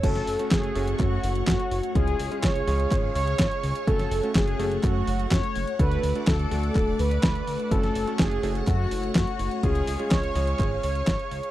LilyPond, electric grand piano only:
\new Staff \with { instrumentName = "Electric grand piano" } { \time 4/4 \key fis \minor \tempo 4 = 125 <a cis' fis' a'>8. <a cis' fis' a'>8. <a cis' fis' a'>2~ <a cis' fis' a'>8 | <gis cis' eis' gis'>8. <gis cis' eis' gis'>8. <gis cis' eis' gis'>2~ <gis cis' eis' gis'>8 | <a cis' fis' a'>8. <a cis' fis' a'>8. <a cis' fis' a'>2~ <a cis' fis' a'>8 | <a d' fis' a'>8. <a d' fis' a'>8. <a d' fis' a'>2~ <a d' fis' a'>8 |
<a cis' fis' a'>8. <a cis' fis' a'>8. <a cis' fis' a'>2~ <a cis' fis' a'>8 | <gis cis' eis' gis'>8. <gis cis' eis' gis'>8. <gis cis' eis' gis'>2~ <gis cis' eis' gis'>8 | }